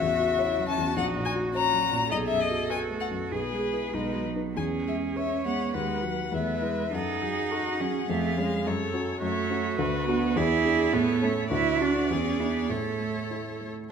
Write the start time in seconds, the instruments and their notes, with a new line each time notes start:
Already playing: grand piano A1, cello F#4, viola F#4, violin E5
0.01 grand piano E2
0.20 grand piano F#4
0.39 cello E4, grand piano C#5
0.58 grand piano F#3
0.68 cello C#4, violin A5
0.78 grand piano E2
0.96 grand piano A#1, cello D#4, violin F#5
1.16 grand piano A#2
1.25 violin G#5
1.35 grand piano F#4
1.55 cello C#4, grand piano C#5, violin A#5
1.73 grand piano F#3
1.93 grand piano A#2
2.11 grand piano B1, cello G#4, viola A4, violin D#5
2.27 violin E5
2.31 grand piano F#2
2.40 violin D#5
2.51 grand piano F#4
2.70 cello F#4, grand piano B4, violin G#5
2.90 grand piano A3
3.00 violin F#5
3.11 grand piano F#2
3.31 grand piano B1, cello G#4, viola G#4, violin B4
3.53 grand piano G#3
3.73 grand piano E4 B4
3.94 grand piano B1, cello G#3, viola D#4
4.15 grand piano F#3
4.25 cello F#3
4.36 grand piano D#4 B4
4.57 grand piano E2, cello C#4, viola G#4, violin G#5
4.87 grand piano G#3, violin E5
5.17 grand piano B4, viola C#5, violin E5
5.45 grand piano G#3, cello B3, violin F#5
5.74 grand piano D#2, cello G#3, viola B4, violin F#5
6.03 cello F#3, grand piano F#4 B4
6.32 grand piano E2, cello A3, viola B4, violin E5
6.62 cello G#3, grand piano E4 B4
6.93 grand piano F#2, cello D#4, viola A4, violin F#5
7.22 grand piano F#3, viola G#4
7.51 viola F#4, grand piano A4
7.80 grand piano F#3, cello C#4, viola G#4
8.09 grand piano F2, cello A3, violin F5
8.38 cello G#3, grand piano C#4 G#4
8.66 grand piano F#2, viola A4, violin C#5
8.94 grand piano C#4 F#4
9.22 grand piano F#2, cello A3, viola F#4, violin C#5
9.50 grand piano C#4 F#4
9.79 grand piano D2, violin B4
10.08 cello B3, grand piano D4 F#4
10.36 grand piano E2, cello E4, viola G#4, violin D5
10.65 grand piano D4 G#4
10.93 grand piano A2, cello B3, viola A4, violin C#5
11.22 cello A3, grand piano C#4 A4
11.51 grand piano D2, cello E4, viola F#4, violin D5
11.80 grand piano D4 F#4, cello D4
12.10 grand piano E2, cello C#4, viola G#4
12.40 cello B3, grand piano D4 E4
12.70 grand piano A2, cello A3, viola A4, violin C#5
13.00 grand piano A3
13.30 grand piano E4
13.61 grand piano A3